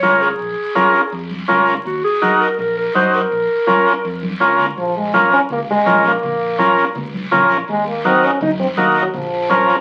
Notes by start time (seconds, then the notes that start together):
Already playing: C#5
0.03 C#2 C#4 F4 A#4, high conga, short guiro
0.21 G#4, short guiro
0.39 A#1, long guiro
0.75 C#4 F4 A#4, high conga, short guiro
0.94 short guiro
1.12 F2, long guiro
1.31 high conga
1.48 C#2 C#4 F4 A#4, high conga, short guiro
1.67 short guiro
1.85 D#2 F#4, long guiro
2.04 G#4
2.22 D#4 F#4 A#4, high conga, short guiro
2.41 A#4, short guiro
2.58 A#1 A#4, long guiro
2.78 A#4
2.94 F#2 D#4 F#4 C5, high conga, short guiro
3.14 A#4, short guiro
3.31 A#1, long guiro
3.67 C#4 F4 A#4, high conga, short guiro
3.87 short guiro
4.05 F2, long guiro
4.23 high conga
4.40 C#2 C#4 F4 A#4, short guiro
4.59 low conga, short guiro
4.78 A#1 F3, long guiro
4.97 G#3
5.14 A#3 C#4 F4 A#4, high conga, short guiro
5.32 C#4, short guiro
5.50 C#2 A#3, low conga, long guiro
5.71 G#3
5.86 A#1 C#4 F4 A#4, high conga, short guiro
6.05 A#3, short guiro
6.23 A#1, low conga, long guiro
6.58 C#4 F4 A#4, high conga, short guiro
6.78 short guiro
6.96 C#2, low conga, long guiro
7.14 high conga
7.32 A#1 C#4 F4 A#4, high conga, low conga, short guiro
7.50 short guiro
7.68 D#2 G#3, long guiro
7.87 A#3
8.04 C4 D#4 F#4 A#4, high conga, short guiro
8.23 C#4, short guiro
8.41 F#2 D#4, low conga, long guiro
8.59 C4, high conga
8.77 D#2 A#3 D#4 F#4 A#4, high conga, short guiro
8.95 short guiro
9.02 F#3
9.13 A#1 F3, low conga, long guiro
9.50 C#4 F4 A#4, high conga, short guiro
9.69 short guiro